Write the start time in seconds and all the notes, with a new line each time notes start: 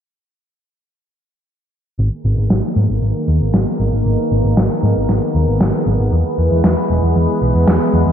1.99 G#1 D#3 A#3 B3 G#4 A#4
2.25 G#1
2.38 G#1
2.50 G#1, snare
2.76 G#2
2.89 G#1
3.02 G#1
3.28 D#2
3.41 G#1
3.54 G#1, snare
3.80 G#1
3.93 G#1
4.06 G#1
4.31 G#1
4.44 G#1
4.57 G#1, snare
4.83 G#2
4.96 G#1
5.09 G#1, snare
5.35 D#2
5.48 G#1
5.60 G#1, snare
5.86 G#1
5.99 G#1
6.12 E2 E3 G#3 B4
6.38 E2
6.51 E2
6.64 E2, snare
6.90 E1
7.03 E2
7.16 E2
7.42 B1
7.55 E2
7.68 E2, snare
7.93 E2
8.06 E2